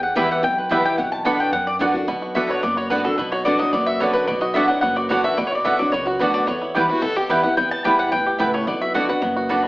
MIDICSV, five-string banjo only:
0, 0, Header, 1, 2, 480
1, 0, Start_track
1, 0, Key_signature, 2, "minor"
1, 0, Tempo, 274600
1, 1718, Time_signature, 4, 2, 24, 8
1, 16917, End_track
2, 0, Start_track
2, 0, Title_t, "Five-string banjo"
2, 0, Program_c, 0, 105
2, 291, Note_on_c, 0, 59, 65
2, 299, Note_on_c, 0, 64, 66
2, 303, Note_on_c, 0, 67, 67
2, 395, Note_off_c, 0, 59, 0
2, 397, Note_off_c, 0, 64, 0
2, 401, Note_off_c, 0, 67, 0
2, 1248, Note_on_c, 0, 59, 61
2, 1253, Note_on_c, 0, 64, 64
2, 1258, Note_on_c, 0, 67, 62
2, 1354, Note_off_c, 0, 59, 0
2, 1354, Note_off_c, 0, 64, 0
2, 1358, Note_off_c, 0, 67, 0
2, 2205, Note_on_c, 0, 59, 68
2, 2211, Note_on_c, 0, 66, 64
2, 2246, Note_off_c, 0, 66, 0
2, 2311, Note_off_c, 0, 59, 0
2, 3164, Note_on_c, 0, 59, 57
2, 3179, Note_on_c, 0, 66, 64
2, 3214, Note_off_c, 0, 66, 0
2, 3272, Note_off_c, 0, 59, 0
2, 3638, Note_on_c, 0, 59, 79
2, 3884, Note_on_c, 0, 66, 53
2, 4110, Note_off_c, 0, 66, 0
2, 4110, Note_on_c, 0, 66, 55
2, 4358, Note_on_c, 0, 71, 60
2, 4587, Note_off_c, 0, 59, 0
2, 4594, Note_on_c, 0, 59, 59
2, 4836, Note_off_c, 0, 66, 0
2, 4843, Note_on_c, 0, 66, 61
2, 5064, Note_off_c, 0, 71, 0
2, 5071, Note_on_c, 0, 71, 57
2, 5319, Note_off_c, 0, 59, 0
2, 5326, Note_on_c, 0, 59, 57
2, 5554, Note_off_c, 0, 59, 0
2, 5561, Note_on_c, 0, 59, 76
2, 5801, Note_off_c, 0, 66, 0
2, 5808, Note_on_c, 0, 66, 58
2, 6030, Note_off_c, 0, 59, 0
2, 6037, Note_on_c, 0, 59, 56
2, 6291, Note_on_c, 0, 54, 58
2, 6518, Note_off_c, 0, 59, 0
2, 6525, Note_on_c, 0, 59, 62
2, 6760, Note_off_c, 0, 66, 0
2, 6767, Note_on_c, 0, 66, 57
2, 6992, Note_off_c, 0, 71, 0
2, 6999, Note_on_c, 0, 71, 60
2, 7245, Note_off_c, 0, 66, 0
2, 7245, Note_on_c, 0, 66, 55
2, 7466, Note_off_c, 0, 59, 0
2, 7473, Note_on_c, 0, 59, 83
2, 7699, Note_off_c, 0, 66, 0
2, 7720, Note_on_c, 0, 66, 59
2, 7945, Note_off_c, 0, 59, 0
2, 7952, Note_on_c, 0, 59, 56
2, 8201, Note_off_c, 0, 54, 0
2, 8208, Note_on_c, 0, 54, 55
2, 8388, Note_off_c, 0, 66, 0
2, 8427, Note_off_c, 0, 59, 0
2, 8434, Note_on_c, 0, 59, 61
2, 8683, Note_on_c, 0, 66, 59
2, 8873, Note_off_c, 0, 54, 0
2, 8914, Note_off_c, 0, 71, 0
2, 8921, Note_on_c, 0, 71, 55
2, 9155, Note_off_c, 0, 66, 0
2, 9176, Note_on_c, 0, 66, 58
2, 9395, Note_off_c, 0, 59, 0
2, 9402, Note_on_c, 0, 59, 75
2, 9625, Note_off_c, 0, 66, 0
2, 9646, Note_on_c, 0, 66, 57
2, 9868, Note_off_c, 0, 59, 0
2, 9875, Note_on_c, 0, 59, 57
2, 10127, Note_on_c, 0, 54, 58
2, 10312, Note_off_c, 0, 66, 0
2, 10356, Note_off_c, 0, 59, 0
2, 10363, Note_on_c, 0, 59, 62
2, 10608, Note_on_c, 0, 66, 60
2, 10793, Note_off_c, 0, 54, 0
2, 10833, Note_off_c, 0, 71, 0
2, 10840, Note_on_c, 0, 71, 53
2, 11067, Note_off_c, 0, 66, 0
2, 11088, Note_on_c, 0, 66, 54
2, 11311, Note_off_c, 0, 59, 0
2, 11318, Note_on_c, 0, 59, 74
2, 11319, Note_off_c, 0, 66, 0
2, 11563, Note_on_c, 0, 64, 57
2, 11792, Note_on_c, 0, 67, 59
2, 12041, Note_off_c, 0, 71, 0
2, 12048, Note_on_c, 0, 71, 58
2, 12231, Note_off_c, 0, 64, 0
2, 12271, Note_off_c, 0, 59, 0
2, 12278, Note_on_c, 0, 59, 64
2, 12475, Note_off_c, 0, 67, 0
2, 12528, Note_on_c, 0, 67, 58
2, 12751, Note_off_c, 0, 71, 0
2, 12758, Note_on_c, 0, 71, 59
2, 13002, Note_off_c, 0, 59, 0
2, 13009, Note_on_c, 0, 59, 59
2, 13193, Note_off_c, 0, 67, 0
2, 13231, Note_off_c, 0, 59, 0
2, 13238, Note_on_c, 0, 59, 79
2, 13723, Note_on_c, 0, 67, 58
2, 13958, Note_off_c, 0, 71, 0
2, 13965, Note_on_c, 0, 71, 58
2, 14189, Note_off_c, 0, 59, 0
2, 14196, Note_on_c, 0, 59, 65
2, 14400, Note_off_c, 0, 67, 0
2, 14448, Note_on_c, 0, 67, 58
2, 14671, Note_off_c, 0, 71, 0
2, 14678, Note_on_c, 0, 71, 55
2, 14929, Note_off_c, 0, 59, 0
2, 14936, Note_on_c, 0, 59, 58
2, 15113, Note_off_c, 0, 67, 0
2, 15153, Note_off_c, 0, 59, 0
2, 15160, Note_on_c, 0, 59, 77
2, 15409, Note_on_c, 0, 66, 61
2, 15645, Note_off_c, 0, 66, 0
2, 15645, Note_on_c, 0, 66, 57
2, 15881, Note_off_c, 0, 71, 0
2, 15888, Note_on_c, 0, 71, 58
2, 16115, Note_off_c, 0, 59, 0
2, 16122, Note_on_c, 0, 59, 64
2, 16363, Note_off_c, 0, 66, 0
2, 16370, Note_on_c, 0, 66, 62
2, 16594, Note_off_c, 0, 71, 0
2, 16601, Note_on_c, 0, 71, 58
2, 16837, Note_off_c, 0, 59, 0
2, 16844, Note_on_c, 0, 59, 54
2, 16917, Note_off_c, 0, 59, 0
2, 16917, Note_off_c, 0, 66, 0
2, 16917, Note_off_c, 0, 71, 0
2, 16917, End_track
0, 0, End_of_file